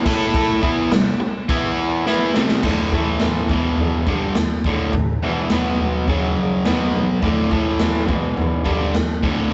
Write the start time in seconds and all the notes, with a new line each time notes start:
0.06 A3 E4 A4, kick, crash
0.34 kick, crash
0.62 E3 B3 E4, kick
0.91 C3 G3, snare, crash
1.20 C3 G3
1.49 E3 B3 E4, kick, crash
2.06 E3 B3 E4, snare
2.34 C3 G3 C4, snare
2.49 snare
2.63 D2 A2 D3, kick, floor tom, crash
2.92 A2 E3 A3, kick, floor tom
3.20 snare, floor tom
3.49 E2 B2 E3, kick, floor tom
3.78 floor tom
4.07 G2 D3 G3, kick, floor tom
4.35 muted overdriven electric guitar stroke, snare, floor tom
4.64 D2 A2 D3, kick, floor tom
4.93 D2 A2, kick, floor tom
5.22 E2 B2 E3, floor tom
5.50 B2 F#3 B3, snare, floor tom
5.80 floor tom
6.08 F#2 C#3 F#3, kick, floor tom
6.37 floor tom
6.65 B2 F#3 B3, snare, floor tom
6.95 floor tom
7.22 D2 A2 D3, kick, floor tom
7.51 A2 E3 A3, kick, floor tom
7.79 snare, floor tom
8.09 E2 B2 E3, kick, floor tom
8.37 floor tom
8.65 G2 D3 G3, kick, floor tom
8.94 muted overdriven electric guitar stroke, snare, floor tom
9.23 D2 A2 D3, kick, floor tom